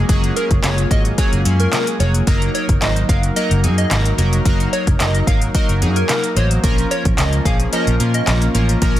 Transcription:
Already playing: G#3 A#3
0.09 F#1 F#3 A#3 C#4 F4 G#4, kick, closed hi-hat
0.24 closed hi-hat
0.36 F#3 A#3 C#4 G#4 A#4, closed hi-hat
0.51 F#1, kick, closed hi-hat
0.63 F#1 F#3 A#3 C#4 G#4 C#5, snare, clap, closed hi-hat
0.78 closed hi-hat
0.91 G#1 F#3 A#3 C#4 G#4 D#5, kick, closed hi-hat
1.05 closed hi-hat
1.18 F#3 A#3 C#4 G#4 C#5, kick, closed hi-hat
1.33 F#1, closed hi-hat
1.45 F#2 F#3 A#3 C#4 G#4, closed hi-hat
1.60 A#4, closed hi-hat
1.72 F#3 A#3 C#4 G#4 A#4, snare, clap, closed hi-hat
1.87 closed hi-hat
2.00 F1 F#3 A#3 C#4 G#4 C#5, closed hi-hat
2.14 closed hi-hat
2.27 F#1 F#3 A#3 D#4 A#4, kick, closed hi-hat
2.42 closed hi-hat
2.54 F#3 A#3 D#4 A#4 C#5, closed hi-hat
2.69 F#1, kick, closed hi-hat
2.82 G#1 F#3 A#3 D#4 C5 D#5, snare, clap, closed hi-hat
2.96 closed hi-hat
3.09 F#1 F#3 A#3 D#4 A#4 F5, kick, closed hi-hat
3.23 closed hi-hat
3.36 F#3 A#3 D#4 A#4 D#5, closed hi-hat
3.51 F#1, closed hi-hat
3.63 F#2 F#3 A#3 D#4 G#4, closed hi-hat
3.78 D#5, closed hi-hat
3.91 G#1 F#3 A#3 D#4 A#4, snare, clap, closed hi-hat
4.05 closed hi-hat
4.18 F1 F#3 A#3 D#4 A#4, closed hi-hat
4.33 closed hi-hat
4.45 F#1 F#3 A#3 D#4 A#4, kick, closed hi-hat
4.60 closed hi-hat
4.73 F#3 A#3 D#4 A#4 C#5, closed hi-hat
4.87 F#1, kick, closed hi-hat
5.00 F#1 F#3 A#3 D#4 A#4 D#5, snare, clap, closed hi-hat
5.15 closed hi-hat
5.27 G#1 F#3 A#3 D#4 A#4 F5, kick, closed hi-hat
5.42 closed hi-hat
5.55 F#3 A#3 D#4 A#4 D#5, kick, closed hi-hat
5.69 F#1, closed hi-hat
5.82 F#2 F#3 A#3 D#4 G#4, closed hi-hat
5.96 A#4, closed hi-hat
6.09 F#3 A#3 D#4 A#4, snare, clap, closed hi-hat
6.24 closed hi-hat
6.36 A1 F#3 A#3 D#4 C5 C#5, closed hi-hat
6.51 closed hi-hat
6.63 A#1 F3 A#3 C#4 F4 A#4, kick, closed hi-hat
6.78 closed hi-hat
6.91 F3 A#3 C#4 A#4 C#5, closed hi-hat
7.05 A#1, kick, closed hi-hat
7.18 C#2 F3 A#3 C#4 A#4 D#5, snare, clap, closed hi-hat
7.33 closed hi-hat
7.45 A#1 F3 A#3 C#4 G#4 F5, kick, closed hi-hat
7.60 closed hi-hat
7.73 F3 A#3 C#4 A#4 D#5, closed hi-hat
7.87 A#1, closed hi-hat
8.00 A#2 F3 A#3 C#4 A#4, closed hi-hat
8.14 D#5, closed hi-hat
8.27 A#1 F3 A#3 C#4 A#4, snare, clap, closed hi-hat
8.42 closed hi-hat
8.54 A1 F3 A#3 C#4 A#4, closed hi-hat
8.69 closed hi-hat
8.82 A#1 F3 A#3 C#4 A#4, kick, closed hi-hat
8.96 closed hi-hat

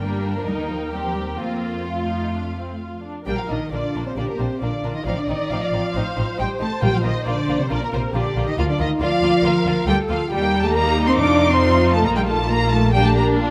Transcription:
Already playing: G1 A#4 G5
0.03 G3 A#3 D4
0.38 F3
0.47 D#2 G3 A#3 D#4 G5
0.59 D#3
0.70 F3
0.92 G3 C4 G4
1.04 F3
1.16 G3
1.39 F2 A#3 C4 F4 F5
1.86 A3 F4
2.10 D#4
2.34 D4
2.58 C4
2.81 F4
3.03 D4
3.25 A#1 G3 A#3 D4 G4 A#4 G5
3.37 F3 F4 F5
3.48 A#1 D#3 A#3 D4 D#4 D#5
3.72 A#1 D3 A#3 D4 F4 D5
3.94 A#1 A#3 D4
4.05 C3 C4 C5
4.17 A#1 D3 A#3 D4 G4 D5
4.28 A#2 A#3 A#4
4.39 A#1 C3 A#3 C4 D4 C5
4.61 A#1 D3 A#3 D4 F4 D5
4.83 A#1 A#3 D4
4.94 D#3 D#4 D#5
5.05 A1 F3 C4 D#4 F4 D5 F5
5.16 D3 D4 D5
5.28 A1 D#3 C4 D#4 D#5
5.50 A1 F3 C4 D#4 F4 F5
5.58 D#5
5.65 F5
5.73 A1 C4 D#4
5.95 A1 C4 D#4 C5
6.17 A1 C4 D#4
6.38 A1 G3 C4 D#4 G4 G5
6.60 A1 A3 C4 D#4 A4 A5
6.82 A#1 A#2 G3 A#3 F4 G4 G5
6.93 F3 F4 F5
7.04 A#1 D#3 A#3 D#4 F4 D#5
7.26 A#1 D3 A#3 D4 F4 D5
7.49 A#1 A#3 F4
7.60 C3 C4 C5
7.70 A#1 D3 A#3 D4 F4 A#4 D5
7.82 A#2 A#3 A#4
7.92 A#1 C3 A#3 C4 F4 C5
8.14 A#1 D3 A#3 D4 F4 G4 D5
8.36 A#1 A#3 F4
8.47 D#3 D#4 D#5
8.57 D2 F3 A#3 F4 F5
8.68 D3 D4 D5
8.79 D2 D#3 A#3 D#4 F4 D#5
9.00 D2 F3 A#3 F4 D5 F5
9.22 D2 A#3 F4
9.43 D2 A#3 F4 A#4
9.65 D2 A#3 F4
9.87 D2 G3 A#3 F4 G4 A4 G5
10.09 D2 F3 A#3 F4 F5
10.30 D#2 G3 D#4 G4 G5
10.42 A#3
10.53 G3
10.63 A3 A#3 A4 A5
10.74 G3 A#3 A#4 A#5
10.86 A#3
10.97 G3
11.07 A#3 C4 C5 C6
11.17 F2 A3 D4 F4 D5 D6
11.29 A3
11.40 A3
11.50 A3 C4 C5 C6
11.61 A3
11.73 A3
11.84 A3
11.94 A3 A4 A5
12.05 A#1 A#3 A#4 A#5
12.16 G3 A#3 G4 G5
12.27 A3 A#3 A4 A5
12.40 A#3
12.48 A#3 A#4 A#5
12.61 A#3
12.71 A3 A#3 A4 A5
12.83 A#3
12.93 G3 A#3 D4 G4 G5
13.04 A3 A#3 A4 A5
13.15 A#3 A#4 A#5
13.28 A#3
13.38 A#3 F4

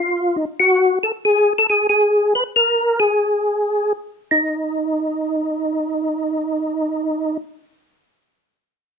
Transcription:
Already playing: F4
0.36 D#4
0.60 F#4
1.03 A4
1.25 G#4
1.58 A4
1.70 G#4
1.89 G#4
2.35 B4
2.56 A#4
3.00 G#4
4.31 D#4

